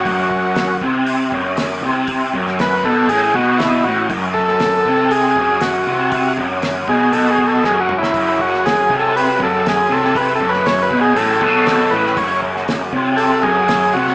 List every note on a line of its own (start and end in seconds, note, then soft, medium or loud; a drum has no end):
0.00 0.77 F#4 medium
0.05 0.77 F#1 medium
0.05 0.80 F#2 loud
0.05 kick loud
0.05 open hi-hat medium
0.31 kick medium
0.56 snare loud
0.56 open hi-hat medium
0.81 1.29 C2 medium
0.81 1.31 C3 medium
0.81 kick medium
1.06 open hi-hat medium
1.32 1.79 F#1 medium
1.32 1.82 F#2 loud
1.32 kick medium
1.57 snare loud
1.57 open hi-hat medium
1.81 2.29 C2 medium
1.81 2.32 C3 medium
2.07 kick loud
2.07 open hi-hat medium
2.33 2.80 F#1 medium
2.33 2.83 F#2 medium
2.33 kick medium
2.47 snare soft
2.59 2.86 B4 loud
2.59 snare loud
2.59 open hi-hat medium
2.83 3.07 B1 medium
2.83 3.08 B2 medium
2.83 3.10 A4 medium
2.83 kick medium
3.07 3.31 A1 medium
3.07 3.34 A2 loud
3.07 3.35 G#4 medium
3.07 open hi-hat medium
3.34 3.81 B1 medium
3.34 3.84 B2 loud
3.34 3.60 F#4 medium
3.34 kick medium
3.58 3.85 E4 medium
3.58 snare loud
3.58 open hi-hat medium
3.84 4.08 A1 medium
3.84 4.10 A2 medium
3.84 4.08 F#4 medium
4.09 4.81 F#1 medium
4.09 4.85 F#2 loud
4.09 kick loud
4.09 open hi-hat medium
4.34 5.12 A4 loud
4.34 kick medium
4.48 snare soft
4.60 snare loud
4.60 open hi-hat medium
4.85 5.32 C2 medium
4.85 5.36 C3 loud
4.85 kick medium
5.11 5.63 G#4 loud
5.11 open hi-hat medium
5.36 5.83 F#1 medium
5.36 5.86 F#2 loud
5.36 kick medium
5.60 6.33 F#4 medium
5.60 snare loud
5.60 open hi-hat medium
5.87 6.34 C2 medium
5.87 6.36 C3 medium
6.12 kick loud
6.12 open hi-hat medium
6.37 6.84 F#1 loud
6.37 6.87 F#2 loud
6.37 kick medium
6.62 snare loud
6.62 open hi-hat medium
6.87 7.11 B1 medium
6.87 7.12 B2 loud
6.87 7.14 G#4 medium
6.87 kick medium
7.12 7.59 B1 medium
7.12 7.63 B2 loud
7.12 7.30 A4 medium
7.12 open hi-hat medium
7.30 7.47 G#4 medium
7.38 kick medium
7.47 7.64 A4 medium
7.63 8.10 F#1 medium
7.63 8.13 F#2 medium
7.63 7.80 G#4 medium
7.63 snare medium
7.80 7.97 F#4 medium
7.89 mid tom medium
7.98 8.41 E4 medium
8.03 snare medium
8.13 8.86 F#1 medium
8.13 14.15 F#2 medium
8.13 8.89 F#2 loud
8.13 14.15 C#3 medium
8.13 kick loud
8.13 open hi-hat medium
8.39 8.66 F#4 medium
8.39 kick medium
8.54 snare soft
8.65 8.96 G#4 medium
8.65 snare loud
8.65 open hi-hat medium
8.89 9.37 C2 medium
8.89 9.39 C3 loud
8.89 kick medium
8.99 9.16 A4 medium
9.16 9.41 B4 medium
9.16 open hi-hat medium
9.39 9.87 F#1 medium
9.39 9.89 F#2 loud
9.39 kick medium
9.43 9.68 A4 medium
9.66 9.93 G#4 medium
9.66 snare loud
9.66 open hi-hat medium
9.89 10.37 C2 medium
9.89 10.39 C3 loud
9.89 10.17 A4 medium
10.04 snare soft
10.15 10.33 B4 loud
10.15 kick loud
10.15 open hi-hat medium
10.35 10.51 A4 medium
10.40 10.87 F#1 medium
10.40 10.90 F#2 medium
10.40 kick medium
10.49 10.67 B4 loud
10.54 snare soft
10.66 10.83 C#5 loud
10.66 snare loud
10.66 open hi-hat medium
10.82 11.00 B4 medium
10.91 11.14 B1 medium
10.91 11.15 B2 medium
10.91 kick medium
11.01 11.18 G#4 medium
11.15 11.40 A1 medium
11.15 11.41 A2 loud
11.15 11.94 A4 loud
11.15 open hi-hat medium
11.41 11.88 B1 medium
11.41 11.91 B2 loud
11.41 kick medium
11.66 snare loud
11.66 open hi-hat medium
11.91 12.15 A1 loud
11.91 12.16 A2 loud
11.91 12.17 B4 medium
12.06 snare soft
12.16 12.89 F#1 medium
12.16 12.92 F#2 medium
12.16 12.41 C#5 medium
12.16 kick loud
12.16 open hi-hat medium
12.42 kick medium
12.56 snare soft
12.68 snare loud
12.68 open hi-hat medium
12.93 13.40 C2 medium
12.93 13.43 C3 loud
12.93 kick medium
13.17 13.44 A4 medium
13.17 open hi-hat medium
13.42 13.90 F#1 loud
13.42 13.93 F#2 loud
13.42 13.95 G#4 medium
13.42 kick medium
13.68 snare loud
13.68 open hi-hat medium
13.93 14.15 C2 loud
13.93 14.15 C3 medium
13.93 14.15 F#4 medium
14.07 snare soft